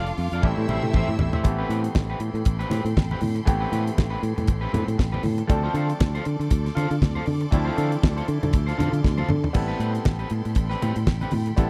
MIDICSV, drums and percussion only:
0, 0, Header, 1, 2, 480
1, 0, Start_track
1, 0, Key_signature, 0, "minor"
1, 0, Tempo, 506329
1, 1373, Time_signature, 4, 2, 24, 8
1, 11091, End_track
2, 0, Start_track
2, 0, Title_t, "Drums"
2, 61, Note_on_c, 9, 42, 46
2, 156, Note_off_c, 9, 42, 0
2, 165, Note_on_c, 9, 46, 70
2, 260, Note_off_c, 9, 46, 0
2, 305, Note_on_c, 9, 42, 44
2, 400, Note_off_c, 9, 42, 0
2, 410, Note_on_c, 9, 36, 113
2, 411, Note_on_c, 9, 48, 60
2, 505, Note_off_c, 9, 36, 0
2, 505, Note_off_c, 9, 48, 0
2, 545, Note_on_c, 9, 48, 56
2, 640, Note_off_c, 9, 48, 0
2, 647, Note_on_c, 9, 47, 79
2, 652, Note_on_c, 9, 62, 57
2, 742, Note_off_c, 9, 47, 0
2, 747, Note_off_c, 9, 62, 0
2, 783, Note_on_c, 9, 47, 81
2, 878, Note_off_c, 9, 47, 0
2, 886, Note_on_c, 9, 45, 83
2, 886, Note_on_c, 9, 63, 61
2, 892, Note_on_c, 9, 36, 95
2, 981, Note_off_c, 9, 45, 0
2, 981, Note_off_c, 9, 63, 0
2, 987, Note_off_c, 9, 36, 0
2, 1023, Note_on_c, 9, 45, 78
2, 1118, Note_off_c, 9, 45, 0
2, 1127, Note_on_c, 9, 43, 106
2, 1127, Note_on_c, 9, 63, 71
2, 1221, Note_off_c, 9, 63, 0
2, 1222, Note_off_c, 9, 43, 0
2, 1262, Note_on_c, 9, 43, 99
2, 1357, Note_off_c, 9, 43, 0
2, 1367, Note_on_c, 9, 62, 47
2, 1372, Note_on_c, 9, 42, 71
2, 1373, Note_on_c, 9, 36, 105
2, 1462, Note_off_c, 9, 62, 0
2, 1466, Note_off_c, 9, 42, 0
2, 1468, Note_off_c, 9, 36, 0
2, 1615, Note_on_c, 9, 42, 64
2, 1710, Note_off_c, 9, 42, 0
2, 1747, Note_on_c, 9, 42, 51
2, 1841, Note_off_c, 9, 42, 0
2, 1848, Note_on_c, 9, 63, 76
2, 1856, Note_on_c, 9, 36, 127
2, 1856, Note_on_c, 9, 38, 118
2, 1943, Note_off_c, 9, 63, 0
2, 1950, Note_off_c, 9, 38, 0
2, 1951, Note_off_c, 9, 36, 0
2, 2086, Note_on_c, 9, 42, 68
2, 2181, Note_off_c, 9, 42, 0
2, 2229, Note_on_c, 9, 42, 39
2, 2324, Note_off_c, 9, 42, 0
2, 2326, Note_on_c, 9, 42, 91
2, 2333, Note_on_c, 9, 36, 115
2, 2421, Note_off_c, 9, 42, 0
2, 2428, Note_off_c, 9, 36, 0
2, 2470, Note_on_c, 9, 42, 35
2, 2565, Note_off_c, 9, 42, 0
2, 2572, Note_on_c, 9, 62, 61
2, 2583, Note_on_c, 9, 42, 57
2, 2667, Note_off_c, 9, 62, 0
2, 2678, Note_off_c, 9, 42, 0
2, 2708, Note_on_c, 9, 42, 51
2, 2803, Note_off_c, 9, 42, 0
2, 2815, Note_on_c, 9, 36, 100
2, 2820, Note_on_c, 9, 63, 66
2, 2821, Note_on_c, 9, 38, 97
2, 2910, Note_off_c, 9, 36, 0
2, 2915, Note_off_c, 9, 63, 0
2, 2916, Note_off_c, 9, 38, 0
2, 2948, Note_on_c, 9, 63, 62
2, 3040, Note_on_c, 9, 46, 62
2, 3043, Note_off_c, 9, 63, 0
2, 3062, Note_on_c, 9, 63, 69
2, 3135, Note_off_c, 9, 46, 0
2, 3157, Note_off_c, 9, 63, 0
2, 3183, Note_on_c, 9, 42, 54
2, 3277, Note_off_c, 9, 42, 0
2, 3291, Note_on_c, 9, 42, 73
2, 3294, Note_on_c, 9, 36, 118
2, 3297, Note_on_c, 9, 62, 52
2, 3386, Note_off_c, 9, 42, 0
2, 3389, Note_off_c, 9, 36, 0
2, 3392, Note_off_c, 9, 62, 0
2, 3534, Note_on_c, 9, 42, 58
2, 3543, Note_on_c, 9, 62, 31
2, 3629, Note_off_c, 9, 42, 0
2, 3637, Note_off_c, 9, 62, 0
2, 3672, Note_on_c, 9, 42, 54
2, 3767, Note_off_c, 9, 42, 0
2, 3775, Note_on_c, 9, 63, 73
2, 3776, Note_on_c, 9, 36, 123
2, 3779, Note_on_c, 9, 38, 123
2, 3870, Note_off_c, 9, 63, 0
2, 3871, Note_off_c, 9, 36, 0
2, 3874, Note_off_c, 9, 38, 0
2, 4013, Note_on_c, 9, 42, 68
2, 4107, Note_off_c, 9, 42, 0
2, 4151, Note_on_c, 9, 64, 75
2, 4152, Note_on_c, 9, 42, 41
2, 4242, Note_off_c, 9, 42, 0
2, 4242, Note_on_c, 9, 42, 91
2, 4246, Note_off_c, 9, 64, 0
2, 4250, Note_on_c, 9, 36, 104
2, 4337, Note_off_c, 9, 42, 0
2, 4344, Note_off_c, 9, 36, 0
2, 4495, Note_on_c, 9, 62, 57
2, 4495, Note_on_c, 9, 64, 83
2, 4499, Note_on_c, 9, 42, 62
2, 4590, Note_off_c, 9, 62, 0
2, 4590, Note_off_c, 9, 64, 0
2, 4593, Note_off_c, 9, 42, 0
2, 4629, Note_on_c, 9, 42, 54
2, 4724, Note_off_c, 9, 42, 0
2, 4732, Note_on_c, 9, 36, 96
2, 4734, Note_on_c, 9, 63, 68
2, 4736, Note_on_c, 9, 38, 88
2, 4827, Note_off_c, 9, 36, 0
2, 4828, Note_off_c, 9, 63, 0
2, 4831, Note_off_c, 9, 38, 0
2, 4873, Note_on_c, 9, 63, 57
2, 4958, Note_on_c, 9, 46, 55
2, 4968, Note_off_c, 9, 63, 0
2, 4982, Note_on_c, 9, 63, 70
2, 5053, Note_off_c, 9, 46, 0
2, 5077, Note_off_c, 9, 63, 0
2, 5099, Note_on_c, 9, 42, 50
2, 5194, Note_off_c, 9, 42, 0
2, 5209, Note_on_c, 9, 62, 45
2, 5210, Note_on_c, 9, 36, 106
2, 5210, Note_on_c, 9, 42, 68
2, 5304, Note_off_c, 9, 42, 0
2, 5304, Note_off_c, 9, 62, 0
2, 5305, Note_off_c, 9, 36, 0
2, 5448, Note_on_c, 9, 42, 58
2, 5454, Note_on_c, 9, 62, 29
2, 5543, Note_off_c, 9, 42, 0
2, 5549, Note_off_c, 9, 62, 0
2, 5589, Note_on_c, 9, 42, 52
2, 5684, Note_off_c, 9, 42, 0
2, 5692, Note_on_c, 9, 63, 76
2, 5695, Note_on_c, 9, 36, 125
2, 5698, Note_on_c, 9, 38, 110
2, 5787, Note_off_c, 9, 63, 0
2, 5789, Note_off_c, 9, 36, 0
2, 5792, Note_off_c, 9, 38, 0
2, 5829, Note_on_c, 9, 42, 35
2, 5924, Note_off_c, 9, 42, 0
2, 5927, Note_on_c, 9, 42, 68
2, 6022, Note_off_c, 9, 42, 0
2, 6075, Note_on_c, 9, 42, 44
2, 6167, Note_off_c, 9, 42, 0
2, 6167, Note_on_c, 9, 42, 94
2, 6171, Note_on_c, 9, 36, 103
2, 6262, Note_off_c, 9, 42, 0
2, 6266, Note_off_c, 9, 36, 0
2, 6316, Note_on_c, 9, 42, 36
2, 6317, Note_on_c, 9, 38, 34
2, 6411, Note_off_c, 9, 38, 0
2, 6411, Note_off_c, 9, 42, 0
2, 6416, Note_on_c, 9, 62, 52
2, 6427, Note_on_c, 9, 42, 55
2, 6511, Note_off_c, 9, 62, 0
2, 6522, Note_off_c, 9, 42, 0
2, 6549, Note_on_c, 9, 42, 46
2, 6644, Note_off_c, 9, 42, 0
2, 6654, Note_on_c, 9, 36, 94
2, 6661, Note_on_c, 9, 38, 95
2, 6662, Note_on_c, 9, 63, 69
2, 6749, Note_off_c, 9, 36, 0
2, 6756, Note_off_c, 9, 38, 0
2, 6757, Note_off_c, 9, 63, 0
2, 6788, Note_on_c, 9, 63, 55
2, 6880, Note_on_c, 9, 46, 58
2, 6883, Note_off_c, 9, 63, 0
2, 6897, Note_on_c, 9, 63, 67
2, 6975, Note_off_c, 9, 46, 0
2, 6992, Note_off_c, 9, 63, 0
2, 7021, Note_on_c, 9, 42, 53
2, 7115, Note_off_c, 9, 42, 0
2, 7131, Note_on_c, 9, 42, 65
2, 7132, Note_on_c, 9, 36, 112
2, 7143, Note_on_c, 9, 62, 53
2, 7226, Note_off_c, 9, 42, 0
2, 7227, Note_off_c, 9, 36, 0
2, 7238, Note_off_c, 9, 62, 0
2, 7374, Note_on_c, 9, 42, 65
2, 7386, Note_on_c, 9, 62, 29
2, 7469, Note_off_c, 9, 42, 0
2, 7481, Note_off_c, 9, 62, 0
2, 7508, Note_on_c, 9, 42, 49
2, 7603, Note_off_c, 9, 42, 0
2, 7617, Note_on_c, 9, 36, 127
2, 7617, Note_on_c, 9, 63, 73
2, 7623, Note_on_c, 9, 38, 109
2, 7712, Note_off_c, 9, 36, 0
2, 7712, Note_off_c, 9, 63, 0
2, 7717, Note_off_c, 9, 38, 0
2, 7751, Note_on_c, 9, 42, 35
2, 7846, Note_off_c, 9, 42, 0
2, 7850, Note_on_c, 9, 42, 67
2, 7945, Note_off_c, 9, 42, 0
2, 7992, Note_on_c, 9, 64, 81
2, 7994, Note_on_c, 9, 42, 43
2, 8087, Note_off_c, 9, 42, 0
2, 8087, Note_off_c, 9, 64, 0
2, 8087, Note_on_c, 9, 42, 80
2, 8092, Note_on_c, 9, 36, 105
2, 8181, Note_off_c, 9, 42, 0
2, 8186, Note_off_c, 9, 36, 0
2, 8234, Note_on_c, 9, 38, 32
2, 8234, Note_on_c, 9, 42, 35
2, 8328, Note_off_c, 9, 42, 0
2, 8329, Note_off_c, 9, 38, 0
2, 8345, Note_on_c, 9, 62, 57
2, 8345, Note_on_c, 9, 64, 76
2, 8347, Note_on_c, 9, 42, 56
2, 8440, Note_off_c, 9, 62, 0
2, 8440, Note_off_c, 9, 64, 0
2, 8442, Note_off_c, 9, 42, 0
2, 8470, Note_on_c, 9, 42, 48
2, 8564, Note_off_c, 9, 42, 0
2, 8572, Note_on_c, 9, 63, 66
2, 8574, Note_on_c, 9, 36, 96
2, 8579, Note_on_c, 9, 38, 50
2, 8667, Note_off_c, 9, 63, 0
2, 8669, Note_off_c, 9, 36, 0
2, 8674, Note_off_c, 9, 38, 0
2, 8703, Note_on_c, 9, 63, 56
2, 8706, Note_on_c, 9, 48, 66
2, 8798, Note_off_c, 9, 63, 0
2, 8801, Note_off_c, 9, 48, 0
2, 8802, Note_on_c, 9, 63, 78
2, 8816, Note_on_c, 9, 45, 96
2, 8897, Note_off_c, 9, 63, 0
2, 8910, Note_off_c, 9, 45, 0
2, 8949, Note_on_c, 9, 43, 94
2, 9044, Note_off_c, 9, 43, 0
2, 9048, Note_on_c, 9, 62, 54
2, 9053, Note_on_c, 9, 36, 106
2, 9053, Note_on_c, 9, 49, 82
2, 9143, Note_off_c, 9, 62, 0
2, 9148, Note_off_c, 9, 36, 0
2, 9148, Note_off_c, 9, 49, 0
2, 9294, Note_on_c, 9, 42, 61
2, 9389, Note_off_c, 9, 42, 0
2, 9431, Note_on_c, 9, 42, 51
2, 9526, Note_off_c, 9, 42, 0
2, 9530, Note_on_c, 9, 63, 76
2, 9536, Note_on_c, 9, 36, 127
2, 9537, Note_on_c, 9, 38, 120
2, 9624, Note_off_c, 9, 63, 0
2, 9631, Note_off_c, 9, 36, 0
2, 9632, Note_off_c, 9, 38, 0
2, 9661, Note_on_c, 9, 42, 31
2, 9756, Note_off_c, 9, 42, 0
2, 9761, Note_on_c, 9, 42, 66
2, 9856, Note_off_c, 9, 42, 0
2, 9908, Note_on_c, 9, 42, 41
2, 10002, Note_off_c, 9, 42, 0
2, 10002, Note_on_c, 9, 42, 86
2, 10011, Note_on_c, 9, 36, 101
2, 10096, Note_off_c, 9, 42, 0
2, 10106, Note_off_c, 9, 36, 0
2, 10144, Note_on_c, 9, 38, 33
2, 10239, Note_off_c, 9, 38, 0
2, 10260, Note_on_c, 9, 42, 60
2, 10261, Note_on_c, 9, 62, 57
2, 10355, Note_off_c, 9, 42, 0
2, 10356, Note_off_c, 9, 62, 0
2, 10388, Note_on_c, 9, 42, 50
2, 10483, Note_off_c, 9, 42, 0
2, 10493, Note_on_c, 9, 63, 66
2, 10495, Note_on_c, 9, 36, 97
2, 10495, Note_on_c, 9, 38, 97
2, 10588, Note_off_c, 9, 63, 0
2, 10589, Note_off_c, 9, 36, 0
2, 10589, Note_off_c, 9, 38, 0
2, 10627, Note_on_c, 9, 63, 55
2, 10632, Note_on_c, 9, 42, 32
2, 10720, Note_on_c, 9, 46, 65
2, 10722, Note_off_c, 9, 63, 0
2, 10727, Note_off_c, 9, 42, 0
2, 10728, Note_on_c, 9, 63, 71
2, 10815, Note_off_c, 9, 46, 0
2, 10823, Note_off_c, 9, 63, 0
2, 10862, Note_on_c, 9, 42, 51
2, 10957, Note_off_c, 9, 42, 0
2, 10971, Note_on_c, 9, 42, 69
2, 10976, Note_on_c, 9, 36, 106
2, 10981, Note_on_c, 9, 62, 53
2, 11066, Note_off_c, 9, 42, 0
2, 11071, Note_off_c, 9, 36, 0
2, 11076, Note_off_c, 9, 62, 0
2, 11091, End_track
0, 0, End_of_file